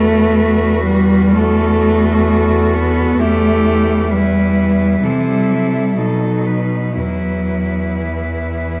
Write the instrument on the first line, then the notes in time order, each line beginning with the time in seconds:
cello
Already playing: E2 A3 F#4 B4
0.85 G3
1.32 A3 F#4 A4
2.28 A4
2.74 B3
3.19 A3 E4 G4
4.10 G3 E4 B4
5.03 C3 E3 E4 A4
5.28 G3
5.51 F#3
5.74 G3
5.97 B2 F#3 D#4 A4
6.46 B4
6.95 E2 F#3 E4 B4
8.01 E3